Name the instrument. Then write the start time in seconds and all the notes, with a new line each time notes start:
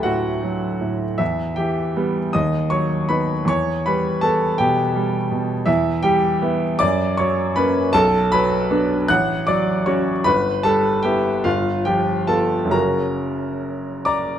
grand piano
Already playing: D2 F#3 A3 G4 A4 B4 G5 A5 B5
0.03 A2 F#4 F#5
0.43 F#3
0.81 A2
1.18 E2 E4 E5
1.56 E3 G4 G5
1.96 G3 B3
2.33 D#2 D#5 D#6
2.70 F#3 C#5 C#6
3.09 B3 D#4 B4 B5
3.45 E2 C#5 C#6
3.86 G3 B4 B5
4.21 B3 A4 A5
4.58 B2 G4 G5
4.95 G3
5.31 B2
5.66 E2 E4 E5
6.03 G3 G4 G5
6.42 B3 E4
6.79 F#2 D5 D6
7.17 F#3 C#5 C#6
7.56 A#3 C#4 B4 B5
7.93 B1 A4 A5
8.32 F#3 B4 B5
8.71 B3 D4
9.08 A1 F#5 F#6
9.47 F#3 D5 D6
9.86 C#4 F#4 C#5 C#6
10.24 G1 B4 B5
10.63 G3 A4 A5
11.03 B3 E4 G4 G5
11.44 G1 F4 F5
11.85 F3 G4 G5
12.27 B3 F4 A4 A5
12.65 F#1
12.69 C#3 C#4 F#4 A#4 A#5
14.05 D5 A#5 D6